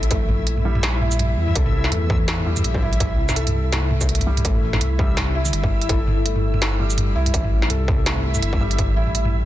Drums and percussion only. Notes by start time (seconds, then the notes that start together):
0.03 closed hi-hat
0.11 kick, closed hi-hat, mid tom
0.29 mid tom
0.47 closed hi-hat
0.57 mid tom
0.75 mid tom
0.83 snare, closed hi-hat
1.01 mid tom
1.11 shaker
1.19 closed hi-hat, mid tom
1.48 mid tom
1.56 kick, closed hi-hat
1.66 mid tom
1.84 snare
1.92 closed hi-hat, mid tom
2.10 kick, mid tom
2.28 snare, closed hi-hat
2.38 mid tom
2.40 mid tom
2.43 mid tom
2.46 mid tom
2.50 mid tom
2.52 mid tom
2.57 mid tom, shaker
2.64 closed hi-hat
2.74 kick
2.82 mid tom
2.93 closed hi-hat
3.00 kick, closed hi-hat, mid tom
3.29 snare, mid tom, shaker
3.36 closed hi-hat
3.47 closed hi-hat, mid tom
3.73 snare, closed hi-hat, mid tom
3.91 mid tom
4.01 kick, shaker
4.09 closed hi-hat
4.15 closed hi-hat
4.19 closed hi-hat, mid tom
4.37 closed hi-hat, mid tom
4.45 kick, closed hi-hat
4.55 mid tom
4.73 snare, mid tom
4.81 closed hi-hat
4.99 kick, mid tom
5.17 snare, closed hi-hat, mid tom
5.45 mid tom, shaker
5.53 closed hi-hat
5.63 kick, mid tom
5.82 closed hi-hat
5.89 kick, closed hi-hat, mid tom
6.07 mid tom
6.26 closed hi-hat
6.36 mid tom
6.54 mid tom
6.62 snare, closed hi-hat
6.80 mid tom
6.90 shaker
6.98 closed hi-hat, mid tom
7.26 closed hi-hat, mid tom
7.34 kick, closed hi-hat
7.44 mid tom
7.62 snare
7.70 closed hi-hat, mid tom
7.88 kick, mid tom
8.06 snare, closed hi-hat
8.17 mid tom
8.35 mid tom, shaker
8.43 closed hi-hat
8.53 kick
8.61 mid tom
8.71 closed hi-hat
8.79 kick, closed hi-hat, mid tom
9.07 mid tom
9.15 closed hi-hat
9.25 mid tom